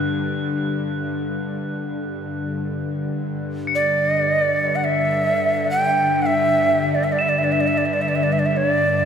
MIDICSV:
0, 0, Header, 1, 4, 480
1, 0, Start_track
1, 0, Tempo, 500000
1, 8689, End_track
2, 0, Start_track
2, 0, Title_t, "Crotales"
2, 0, Program_c, 0, 9
2, 0, Note_on_c, 0, 90, 52
2, 3170, Note_off_c, 0, 90, 0
2, 3526, Note_on_c, 0, 97, 41
2, 6899, Note_on_c, 0, 100, 42
2, 8689, Note_off_c, 0, 97, 0
2, 8689, Note_off_c, 0, 100, 0
2, 8689, End_track
3, 0, Start_track
3, 0, Title_t, "Native American-style wooden flute"
3, 0, Program_c, 1, 77
3, 3601, Note_on_c, 1, 74, 74
3, 4565, Note_on_c, 1, 78, 59
3, 4579, Note_off_c, 1, 74, 0
3, 4649, Note_on_c, 1, 76, 85
3, 4663, Note_off_c, 1, 78, 0
3, 5470, Note_off_c, 1, 76, 0
3, 5480, Note_on_c, 1, 79, 82
3, 5972, Note_on_c, 1, 78, 79
3, 5986, Note_off_c, 1, 79, 0
3, 6010, Note_on_c, 1, 76, 86
3, 6020, Note_off_c, 1, 78, 0
3, 6671, Note_on_c, 1, 74, 66
3, 6686, Note_off_c, 1, 76, 0
3, 6757, Note_on_c, 1, 76, 66
3, 6771, Note_off_c, 1, 74, 0
3, 6837, Note_on_c, 1, 74, 66
3, 6852, Note_off_c, 1, 76, 0
3, 6927, Note_on_c, 1, 76, 67
3, 6942, Note_off_c, 1, 74, 0
3, 6996, Note_on_c, 1, 74, 62
3, 7010, Note_off_c, 1, 76, 0
3, 7089, Note_on_c, 1, 76, 61
3, 7103, Note_off_c, 1, 74, 0
3, 7141, Note_on_c, 1, 74, 61
3, 7155, Note_off_c, 1, 76, 0
3, 7221, Note_on_c, 1, 76, 65
3, 7235, Note_off_c, 1, 74, 0
3, 7301, Note_on_c, 1, 74, 61
3, 7315, Note_off_c, 1, 76, 0
3, 7368, Note_on_c, 1, 76, 66
3, 7382, Note_off_c, 1, 74, 0
3, 7466, Note_on_c, 1, 74, 56
3, 7481, Note_off_c, 1, 76, 0
3, 7540, Note_on_c, 1, 76, 57
3, 7555, Note_off_c, 1, 74, 0
3, 7618, Note_on_c, 1, 74, 58
3, 7632, Note_off_c, 1, 76, 0
3, 7695, Note_on_c, 1, 76, 56
3, 7709, Note_off_c, 1, 74, 0
3, 7762, Note_on_c, 1, 74, 66
3, 7776, Note_off_c, 1, 76, 0
3, 7828, Note_on_c, 1, 76, 62
3, 7843, Note_off_c, 1, 74, 0
3, 7904, Note_on_c, 1, 74, 67
3, 7918, Note_off_c, 1, 76, 0
3, 7992, Note_on_c, 1, 76, 62
3, 8007, Note_off_c, 1, 74, 0
3, 8056, Note_on_c, 1, 74, 62
3, 8070, Note_off_c, 1, 76, 0
3, 8121, Note_on_c, 1, 76, 67
3, 8135, Note_off_c, 1, 74, 0
3, 8224, Note_on_c, 1, 73, 79
3, 8238, Note_off_c, 1, 76, 0
3, 8339, Note_off_c, 1, 73, 0
3, 8339, Note_on_c, 1, 74, 79
3, 8689, Note_off_c, 1, 74, 0
3, 8689, End_track
4, 0, Start_track
4, 0, Title_t, "Synth drone"
4, 0, Program_c, 2, 95
4, 0, Note_on_c, 2, 43, 65
4, 0, Note_on_c, 2, 50, 61
4, 2700, Note_off_c, 2, 43, 0
4, 2707, Note_off_c, 2, 50, 0
4, 2711, Note_on_c, 2, 43, 64
4, 2718, Note_on_c, 2, 50, 65
4, 8689, Note_off_c, 2, 43, 0
4, 8689, Note_off_c, 2, 50, 0
4, 8689, End_track
0, 0, End_of_file